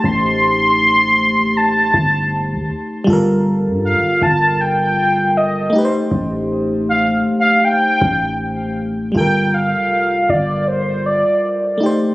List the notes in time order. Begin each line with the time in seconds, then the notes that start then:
Already playing: A3 D#4 G4 C5
0.04 A1 C6
1.57 A5
1.94 G1
2.52 D#2
3.04 G1 G3 F4
3.10 A4 A#4
3.66 G2
3.85 F5
3.94 G1
4.22 G1 A5
4.61 G5
5.37 D#5
5.70 A3 D#4
5.75 G4 B4
5.85 C5
6.11 A1
6.89 F5
7.40 F5
7.64 G5
8.02 A1
9.12 G1 G3 F4
9.17 A4 A#4 G5
9.54 F5
9.74 F1
10.29 G1 D5
10.68 C5
11.06 D5
11.78 A3 D#4
11.83 G4 C5